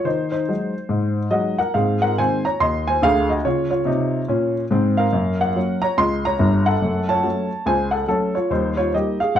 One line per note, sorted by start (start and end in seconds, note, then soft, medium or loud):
0.05 0.42 D#3 medium
0.05 0.30 D#4 medium
0.05 0.30 C5 medium
0.32 0.47 D#4 soft
0.32 1.17 C5 medium
0.49 0.72 F#3 soft
0.49 0.72 G#3 soft
0.49 0.72 D#4 soft
0.89 1.26 G#2 medium
1.31 1.55 F#3 soft
1.31 1.55 G#3 soft
1.31 1.55 D#4 soft
1.31 1.58 F#4 medium
1.31 1.59 D#5 medium
1.59 1.75 A#4 medium
1.59 1.75 F#5 medium
1.74 2.11 G#2 medium
1.74 1.99 C4 soft
1.74 2.01 G#4 soft
1.74 2.02 F5 medium
2.02 2.17 A#4 medium
2.02 2.18 F#5 medium
2.18 2.41 D#3 soft
2.18 2.41 G#3 soft
2.18 2.42 C4 soft
2.18 2.44 C5 medium
2.18 2.45 G#5 medium
2.45 2.60 C#5 medium
2.45 2.61 A#5 medium
2.60 2.96 D#2 medium
2.60 2.86 D#5 medium
2.60 2.87 C6 medium
2.88 3.03 C5 medium
2.88 3.03 G#5 medium
3.02 3.36 D2 medium
3.02 3.36 D3 medium
3.02 3.28 G#4 medium
3.02 3.30 F5 loud
3.29 3.44 F#4 medium
3.29 3.45 D#5 medium
3.45 3.79 C#3 medium
3.45 3.70 F4 medium
3.45 3.69 C#5 medium
3.71 4.52 F4 medium
3.71 4.55 C#5 medium
3.85 4.20 C3 medium
3.85 4.21 D#4 medium
4.28 4.62 A#2 medium
4.28 4.63 C#4 medium
4.71 5.05 G#2 medium
4.71 5.05 C4 medium
4.97 5.38 A#4 medium
4.97 5.40 F5 medium
5.13 5.49 F#2 medium
5.13 5.37 A#3 soft
5.41 5.80 A#4 medium
5.41 5.83 F#5 medium
5.56 5.79 F#3 soft
5.56 5.79 A#3 soft
5.56 5.79 C#4 soft
5.82 5.98 C#5 medium
5.82 5.98 A#5 medium
5.98 6.34 C#2 medium
5.98 6.23 D#5 medium
5.98 6.24 C6 medium
6.25 6.65 C#5 medium
6.25 6.67 A#5 medium
6.39 6.73 G1 medium
6.39 6.73 G2 medium
6.66 7.07 A4 medium
6.66 7.09 F#5 medium
6.82 7.18 F#2 medium
6.82 7.07 A3 soft
7.09 7.63 C#5 medium
7.09 7.67 A5 medium
7.24 7.47 F#3 soft
7.24 7.47 A3 soft
7.24 7.47 C#4 soft
7.66 8.02 C#2 medium
7.66 7.92 C5 medium
7.66 7.93 G#5 medium
7.91 8.07 A4 medium
7.91 8.08 F#5 medium
8.07 8.31 F#3 soft
8.07 8.32 A3 soft
8.07 8.34 C#4 medium
8.07 8.35 A4 medium
8.35 8.50 F4 soft
8.35 8.51 C#5 medium
8.50 8.86 D#2 medium
8.50 8.75 G3 soft
8.50 8.76 D#4 medium
8.50 8.78 C5 medium
8.77 8.93 F4 soft
8.77 8.93 C#5 medium
8.94 9.17 G3 soft
8.94 9.17 A#3 soft
8.94 9.17 D#4 soft
8.94 9.19 G4 medium
8.94 9.20 D#5 medium
9.20 9.36 G#4 medium
9.20 9.36 F5 medium
9.35 9.40 G#2 medium
9.35 9.40 C5 medium
9.35 9.40 F#5 medium